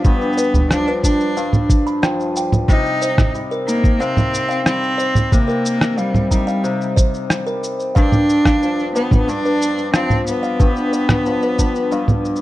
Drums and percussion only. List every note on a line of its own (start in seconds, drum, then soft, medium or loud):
0.04 kick loud
0.04 shaker soft
0.21 shaker soft
0.33 shaker soft
0.38 shaker medium
0.54 low conga medium
0.54 shaker soft
0.71 cross-stick medium
0.71 shaker soft
0.88 shaker soft
1.04 kick medium
1.04 shaker medium
1.20 shaker soft
1.37 shaker soft
1.53 low conga medium
1.53 shaker soft
1.69 kick loud
1.69 shaker medium
1.87 shaker soft
2.03 cross-stick medium
2.03 shaker soft
2.20 shaker soft
2.36 shaker medium
2.52 low conga medium
2.52 shaker soft
2.68 kick loud
2.68 shaker soft
2.86 shaker soft
3.02 shaker medium
3.18 kick loud
3.18 cross-stick medium
3.18 low conga medium
3.18 shaker soft
3.35 shaker soft
3.52 shaker soft
3.68 shaker medium
3.84 kick loud
3.84 shaker soft
4.01 shaker soft
4.17 low conga medium
4.17 shaker soft
4.34 shaker medium
4.50 shaker soft
4.66 cross-stick medium
4.66 shaker soft
4.83 shaker soft
4.99 shaker medium
5.15 low conga medium
5.15 shaker soft
5.32 kick loud
5.32 shaker soft
5.49 shaker soft
5.65 shaker medium
5.81 cross-stick medium
5.81 shaker soft
5.98 shaker soft
6.14 low conga medium
6.14 shaker soft
6.31 kick medium
6.31 shaker medium
6.48 shaker soft
6.64 shaker soft
6.81 shaker soft
6.97 kick loud
6.97 shaker medium
7.14 shaker soft
7.30 cross-stick medium
7.30 shaker soft
7.47 shaker soft
7.63 shaker medium
7.80 shaker soft
7.96 kick loud
7.96 shaker soft
8.12 low conga medium
8.12 shaker soft
8.29 shaker medium
8.45 kick loud
8.45 cross-stick medium
8.45 shaker soft
8.63 shaker soft
8.79 shaker soft
8.96 shaker medium
9.11 kick loud
9.11 low conga medium
9.11 shaker soft
9.29 shaker soft
9.46 shaker soft
9.62 shaker medium
9.78 shaker soft
9.94 cross-stick medium
9.94 shaker soft
10.10 low conga medium
10.10 shaker soft
10.27 shaker medium
10.44 shaker soft
10.60 kick loud
10.60 shaker soft
10.76 shaker soft
10.93 shaker medium
11.09 cross-stick medium
11.09 low conga medium
11.09 shaker soft
11.26 shaker soft
11.42 shaker soft
11.59 kick medium
11.59 shaker medium
11.75 shaker soft
11.92 shaker soft
12.08 low conga medium
12.08 shaker soft
12.25 shaker soft
12.36 shaker soft